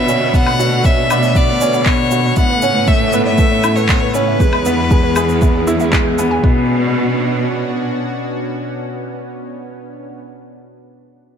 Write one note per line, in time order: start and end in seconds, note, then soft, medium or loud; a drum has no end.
0.00 2.34 B2 loud
0.00 2.33 D3 medium
0.00 0.29 B3 medium
0.00 0.34 B3 loud
0.00 0.09 C#4 loud
0.00 1.10 D4 loud
0.00 0.59 F#4 medium
0.00 2.33 B4 medium
0.00 0.37 E5 loud
0.08 0.23 C#4 loud
0.08 0.12 D5 medium
0.08 shaker medium
0.22 0.25 C#5 medium
0.33 2.35 A3 medium
0.33 0.58 B3 loud
0.33 0.38 D5 medium
0.33 0.87 F#5 loud
0.33 kick loud
0.33 shaker soft
0.46 0.53 F#5 medium
0.46 low woodblock medium
0.59 0.74 F#4 medium
0.59 0.69 C#5 loud
0.59 shaker medium
0.73 0.76 D5 medium
0.85 1.09 C#4 medium
0.85 0.89 C#5 medium
0.85 1.38 E5 loud
0.85 kick loud
0.85 shaker soft
0.98 1.01 D5 medium
1.10 1.34 D4 loud
1.10 1.17 F#5 medium
1.10 low woodblock medium
1.10 shaker medium
1.23 1.32 C#5 loud
1.23 shaker soft
1.35 1.50 B3 medium
1.35 1.88 D5 loud
1.35 kick loud
1.35 shaker soft
1.49 1.52 C#5 medium
1.61 1.75 C#4 loud
1.61 1.65 D5 medium
1.61 shaker medium
1.73 1.80 F#5 medium
1.73 shaker soft
1.86 2.10 B3 loud
1.86 2.38 C#5 loud
1.86 1.96 C#5 loud
1.86 kick loud
1.86 clap medium
1.86 shaker soft
1.99 2.03 D5 medium
2.11 2.26 F#4 medium
2.11 2.16 C#5 medium
2.11 shaker medium
2.25 2.28 D5 medium
2.36 4.38 A2 loud
2.36 4.38 C#3 medium
2.36 4.38 A3 medium
2.36 6.40 B3 medium
2.36 2.61 B3 medium
2.36 2.43 E5 medium
2.36 2.89 F#5 loud
2.36 kick medium
2.36 shaker soft
2.50 2.59 B4 loud
2.62 2.87 C#4 loud
2.62 2.66 C#5 medium
2.62 shaker medium
2.76 2.79 B4 medium
2.87 3.02 A3 loud
2.87 2.92 C#5 medium
2.87 3.24 E5 loud
2.87 kick loud
2.87 shaker soft
3.01 3.07 E5 medium
3.13 3.28 B3 loud
3.13 3.23 B4 loud
3.13 shaker medium
3.25 3.30 C#5 medium
3.25 3.77 E5 loud
3.38 3.63 A3 loud
3.38 3.43 B4 medium
3.38 kick loud
3.38 shaker soft
3.52 3.55 C#5 medium
3.64 3.78 E4 medium
3.64 3.71 E5 medium
3.64 low woodblock medium
3.64 shaker medium
3.75 3.86 B4 loud
3.75 4.15 C#5 loud
3.75 shaker soft
3.89 4.14 B3 medium
3.89 3.93 C#5 medium
3.89 kick loud
3.89 clap medium
3.89 shaker soft
4.02 4.06 B4 medium
4.13 4.39 C#4 loud
4.13 5.92 B4 loud
4.13 4.19 C#5 medium
4.13 shaker medium
4.28 4.34 E5 medium
4.40 6.41 E2 loud
4.40 6.42 E3 medium
4.40 4.55 G#3 loud
4.40 6.42 G#3 medium
4.40 4.50 B4 loud
4.40 kick loud
4.40 shaker soft
4.53 4.57 E5 medium
4.53 low woodblock medium
4.65 4.80 B3 loud
4.65 4.69 B4 medium
4.65 shaker medium
4.78 4.82 E5 medium
4.91 5.15 G#3 loud
4.91 4.97 G#5 medium
4.91 kick loud
4.91 shaker soft
5.04 5.13 B4 loud
5.16 5.31 G#4 medium
5.16 5.20 E5 medium
5.16 low woodblock medium
5.16 shaker medium
5.29 5.33 B4 medium
5.29 shaker soft
5.42 5.66 B3 medium
5.42 5.46 E5 medium
5.42 kick loud
5.42 shaker soft
5.55 5.61 G#5 medium
5.67 5.92 E4 loud
5.67 5.71 G#4 medium
5.67 shaker medium
5.80 5.90 E5 loud
5.80 shaker soft
5.93 6.07 G#3 loud
5.93 5.99 B4 medium
5.93 kick loud
5.93 clap medium
5.93 shaker soft
6.06 6.12 G6 medium
6.18 6.33 B3 loud
6.18 6.22 G#5 medium
6.18 shaker medium
6.31 6.37 G#5 loud
6.43 10.20 B2 medium
6.43 7.92 B2 loud
6.43 6.67 B3 loud
6.43 10.20 B3 medium
6.43 10.20 C#4 medium
6.43 10.20 D4 medium
6.43 10.20 F#4 medium
6.43 6.67 B4 medium
6.43 kick loud